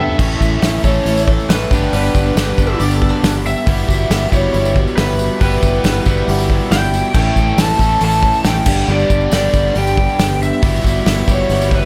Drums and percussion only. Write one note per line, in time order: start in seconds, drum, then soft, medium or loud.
0.08 floor tom medium
0.19 kick loud
0.19 crash loud
0.19 tambourine soft
0.31 tambourine soft
0.41 kick medium
0.41 tambourine medium
0.62 snare loud
0.62 open hi-hat medium
0.62 tambourine medium
0.84 kick medium
0.84 tambourine medium
1.06 open hi-hat medium
1.06 tambourine soft
1.17 tambourine medium
1.28 kick medium
1.28 tambourine soft
1.39 tambourine soft
1.50 snare loud
1.50 open hi-hat medium
1.50 tambourine loud
1.62 tambourine soft
1.71 kick loud
1.71 tambourine medium
1.93 open hi-hat medium
1.93 tambourine soft
2.06 tambourine soft
2.15 kick medium
2.15 tambourine medium
2.27 tambourine soft
2.37 snare loud
2.37 open hi-hat medium
2.37 tambourine loud
2.48 tambourine soft
2.58 kick medium
2.58 tambourine medium
2.80 open hi-hat medium
2.80 tambourine soft
2.91 tambourine medium
3.02 kick medium
3.02 tambourine soft
3.24 snare loud
3.24 open hi-hat medium
3.24 tambourine medium
3.35 tambourine soft
3.46 tambourine medium
3.56 tambourine soft
3.67 kick loud
3.67 open hi-hat medium
3.67 tambourine soft
3.79 tambourine soft
3.89 kick medium
3.89 tambourine medium
4.10 snare loud
4.10 open hi-hat medium
4.10 tambourine loud
4.32 kick medium
4.32 tambourine medium
4.54 open hi-hat medium
4.54 tambourine soft
4.65 tambourine medium
4.76 kick medium
4.76 tambourine soft
4.87 tambourine soft
4.97 snare loud
4.97 open hi-hat medium
4.97 tambourine medium
5.10 tambourine soft
5.19 tambourine medium
5.30 tambourine soft
5.41 kick loud
5.41 open hi-hat medium
5.41 tambourine soft
5.53 tambourine soft
5.63 kick medium
5.63 tambourine medium
5.84 snare loud
5.84 open hi-hat medium
5.84 tambourine medium
5.95 tambourine soft
6.05 kick medium
6.05 tambourine medium
6.17 tambourine soft
6.28 open hi-hat medium
6.28 tambourine soft
6.39 tambourine medium
6.50 kick medium
6.61 tambourine soft
6.71 snare loud
6.71 open hi-hat medium
6.71 tambourine medium
6.83 tambourine soft
6.94 tambourine medium
7.05 tambourine soft
7.14 kick loud
7.14 tambourine soft
7.14 crash loud
7.26 tambourine soft
7.36 kick medium
7.36 tambourine medium
7.47 tambourine soft
7.58 snare loud
7.58 open hi-hat medium
7.58 tambourine medium
7.69 tambourine soft
7.79 kick medium
7.79 tambourine medium
8.01 open hi-hat medium
8.01 tambourine soft
8.12 tambourine medium
8.23 kick medium
8.23 tambourine soft
8.34 tambourine soft
8.44 snare loud
8.44 open hi-hat medium
8.44 tambourine medium
8.56 tambourine soft
8.66 kick loud
8.66 tambourine medium
8.66 crash loud
8.89 tambourine soft
9.00 tambourine soft
9.10 kick medium
9.10 tambourine medium
9.21 tambourine soft
9.31 snare loud
9.31 open hi-hat medium
9.31 tambourine loud
9.53 kick medium
9.53 tambourine medium
9.75 open hi-hat medium
9.75 tambourine soft
9.87 tambourine medium
9.97 kick medium
9.97 tambourine soft
10.09 tambourine soft
10.19 snare loud
10.19 open hi-hat medium
10.19 tambourine loud
10.31 tambourine soft
10.43 tambourine medium
10.53 tambourine soft
10.63 kick loud
10.63 open hi-hat medium
10.63 tambourine soft
10.76 tambourine soft
10.84 kick medium
10.84 tambourine medium
10.97 tambourine soft
11.06 snare loud
11.06 open hi-hat medium
11.06 tambourine loud
11.18 tambourine soft
11.28 kick medium
11.28 tambourine medium
11.50 open hi-hat medium
11.50 tambourine soft
11.62 tambourine medium
11.71 kick medium
11.71 tambourine soft